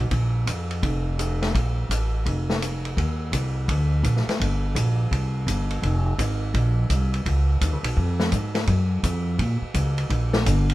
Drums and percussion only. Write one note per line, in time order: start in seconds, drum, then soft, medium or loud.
0.11 kick soft
0.11 ride medium
0.47 hi-hat pedal medium
0.47 ride medium
0.71 ride soft
0.83 kick soft
0.83 ride medium
1.19 hi-hat pedal medium
1.19 ride medium
1.42 snare medium
1.42 ride soft
1.55 kick soft
1.55 ride medium
1.91 hi-hat pedal medium
1.91 ride medium
2.26 kick soft
2.26 ride medium
2.50 snare medium
2.62 hi-hat pedal medium
2.62 ride medium
2.85 ride soft
2.97 kick soft
2.97 ride medium
3.33 kick soft
3.33 hi-hat pedal medium
3.33 ride medium
3.68 kick soft
3.68 ride medium
4.04 kick soft
4.04 hi-hat pedal soft
4.04 ride medium
4.17 snare soft
4.29 snare soft
4.29 ride soft
4.40 kick soft
4.40 ride medium
4.76 kick soft
4.76 hi-hat pedal medium
4.76 ride medium
5.12 kick soft
5.12 ride medium
5.47 kick soft
5.47 hi-hat pedal medium
5.47 ride medium
5.70 ride soft
5.83 kick soft
5.83 ride medium
6.19 kick soft
6.19 hi-hat pedal medium
6.19 ride medium
6.54 kick soft
6.54 ride medium
6.90 kick soft
6.90 hi-hat pedal medium
6.90 ride medium
7.14 ride soft
7.26 kick soft
7.26 ride medium
7.61 kick soft
7.61 hi-hat pedal soft
7.61 ride medium
7.84 ride medium
7.97 kick soft
8.20 snare medium
8.32 kick soft
8.32 hi-hat pedal medium
8.32 ride medium
8.55 snare soft
8.55 ride medium
8.67 kick soft
8.67 ride medium
9.03 kick soft
9.03 hi-hat pedal medium
9.03 ride medium
9.39 kick soft
9.39 ride medium
9.74 kick soft
9.74 hi-hat pedal medium
9.74 ride medium
9.98 ride medium
10.10 kick soft
10.10 ride medium
10.33 snare medium
10.46 kick soft
10.46 hi-hat pedal medium
10.46 ride medium
10.70 ride medium